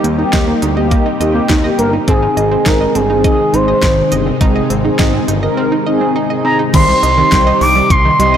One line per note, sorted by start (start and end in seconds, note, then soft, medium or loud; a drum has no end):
0.00 0.24 D#2 loud
0.00 2.04 G3 medium
0.00 0.12 A#3 medium
0.00 2.05 C4 medium
0.00 2.04 D#4 medium
0.00 2.04 G4 medium
0.04 closed hi-hat medium
0.18 0.60 A#3 medium
0.18 0.60 D#4 medium
0.18 0.27 D#4 medium
0.18 0.60 G4 loud
0.33 0.54 D#2 medium
0.33 0.41 D#5 medium
0.33 kick loud
0.33 snare loud
0.33 closed hi-hat medium
0.48 0.56 A#3 medium
0.62 0.93 D2 medium
0.62 0.71 D#4 medium
0.62 closed hi-hat medium
0.77 1.08 A#3 medium
0.77 1.08 D#4 medium
0.77 1.08 G4 medium
0.77 0.85 D#5 medium
0.91 1.00 A#3 medium
0.91 kick loud
0.91 closed hi-hat medium
1.06 1.14 D#4 medium
1.20 1.41 D#2 loud
1.20 1.51 A#3 medium
1.20 1.51 D#4 medium
1.20 1.51 G4 loud
1.20 1.29 D#5 medium
1.20 closed hi-hat medium
1.35 1.43 A#3 medium
1.49 1.70 D#2 loud
1.49 1.58 D#4 medium
1.49 kick loud
1.49 snare loud
1.49 closed hi-hat medium
1.64 1.95 A#3 medium
1.64 1.95 D#4 medium
1.64 1.95 G4 medium
1.64 1.72 D#5 medium
1.79 1.99 G1 medium
1.79 1.87 A#3 medium
1.79 1.92 A#4 medium
1.79 closed hi-hat medium
1.93 2.01 D#4 medium
2.08 2.28 G#1 loud
2.08 6.70 C3 medium
2.08 6.70 D#3 medium
2.08 6.70 G#3 medium
2.08 2.16 C4 loud
2.08 2.39 C4 medium
2.08 6.70 D#4 medium
2.08 2.39 D#4 medium
2.08 2.39 G#4 medium
2.08 2.68 G#4 medium
2.08 kick loud
2.08 closed hi-hat medium
2.22 2.31 D#4 medium
2.37 2.57 G#1 loud
2.37 2.45 D#5 medium
2.37 closed hi-hat medium
2.51 2.60 C4 medium
2.51 2.93 C4 medium
2.51 2.93 D#4 medium
2.51 2.93 G#4 medium
2.66 2.87 G#1 loud
2.66 2.74 D#4 medium
2.66 2.97 A#4 loud
2.66 kick loud
2.66 snare loud
2.66 closed hi-hat medium
2.81 2.89 D#5 medium
2.95 3.26 G1 medium
2.95 3.03 C4 medium
2.95 3.24 G#4 medium
2.95 closed hi-hat medium
3.10 3.41 C4 medium
3.10 3.41 D#4 medium
3.10 3.18 D#4 medium
3.10 3.41 G#4 medium
3.24 3.55 G#4 loud
3.24 3.33 D#5 loud
3.24 kick loud
3.24 closed hi-hat medium
3.53 3.74 G#1 loud
3.53 3.84 C4 medium
3.53 3.85 D#4 medium
3.53 3.62 D#4 medium
3.53 3.84 G#4 medium
3.53 4.12 C5 loud
3.53 closed hi-hat medium
3.68 3.76 D#5 medium
3.83 4.03 G#1 loud
3.83 3.91 C4 medium
3.83 kick loud
3.83 snare loud
3.83 closed hi-hat medium
3.97 4.28 C4 medium
3.97 4.28 D#4 medium
3.97 4.28 G#4 medium
4.12 4.32 G1 medium
4.12 4.20 D#5 medium
4.12 closed hi-hat medium
4.26 4.35 C4 medium
4.41 4.61 G#1 loud
4.41 4.72 C4 medium
4.41 4.72 D#4 medium
4.41 4.49 D#4 loud
4.41 4.72 G#4 loud
4.41 kick loud
4.41 closed hi-hat medium
4.56 4.64 D#5 medium
4.70 4.90 G#1 loud
4.70 4.78 C4 medium
4.70 closed hi-hat medium
4.84 5.26 C4 medium
4.84 5.26 D#4 medium
4.84 4.93 D#4 medium
4.84 5.26 G#4 loud
4.99 5.20 G#1 medium
4.99 5.07 D#5 medium
4.99 kick loud
4.99 snare loud
4.99 closed hi-hat medium
5.14 5.22 C4 medium
5.28 5.49 G1 medium
5.28 5.36 D#4 medium
5.28 closed hi-hat medium
5.43 5.74 C4 medium
5.43 5.74 D#4 medium
5.43 5.74 A#4 loud
5.43 5.51 D#5 medium
5.57 5.66 C4 medium
5.72 5.80 D#4 medium
5.86 6.18 C4 medium
5.86 6.18 D#4 medium
5.86 6.18 G#4 loud
5.86 5.95 D#5 medium
6.01 6.09 C4 medium
6.16 6.24 D#4 medium
6.30 6.61 C4 loud
6.30 6.61 D#4 medium
6.30 6.61 G#4 loud
6.30 6.38 D#5 medium
6.45 6.53 C4 medium
6.45 6.58 A#5 medium
6.59 6.67 D#4 medium
6.74 6.94 C2 loud
6.74 8.37 C3 medium
6.74 6.82 D#3 loud
6.74 8.37 D#3 medium
6.74 8.37 G3 medium
6.74 7.05 C4 medium
6.74 8.37 D#4 medium
6.74 7.05 D#4 medium
6.74 7.05 G4 medium
6.74 7.05 C5 medium
6.74 7.57 C6 loud
6.74 kick loud
6.74 closed hi-hat medium
6.74 crash loud
6.88 6.97 G3 medium
7.03 7.23 C2 loud
7.03 7.11 D#5 medium
7.03 closed hi-hat medium
7.18 7.26 D#3 medium
7.18 7.90 C4 medium
7.18 7.90 D#4 medium
7.18 7.90 G4 medium
7.18 7.90 C5 medium
7.32 7.53 C2 loud
7.32 7.40 G3 medium
7.32 kick loud
7.32 snare loud
7.32 closed hi-hat medium
7.47 7.55 D#5 medium
7.61 7.82 C2 loud
7.61 7.69 D#3 medium
7.61 7.92 D6 medium
7.61 open hi-hat medium
7.76 7.84 G3 medium
7.90 8.11 C2 loud
7.90 8.19 C6 loud
7.90 kick loud
7.90 closed hi-hat medium
8.05 8.13 D#3 medium
8.19 8.37 C2 loud
8.19 8.28 G3 medium
8.19 8.37 C4 medium
8.19 8.37 D#4 medium
8.19 8.37 G4 medium
8.19 8.37 D#5 medium
8.19 8.37 C6 loud
8.19 closed hi-hat medium
8.34 8.37 D#5 medium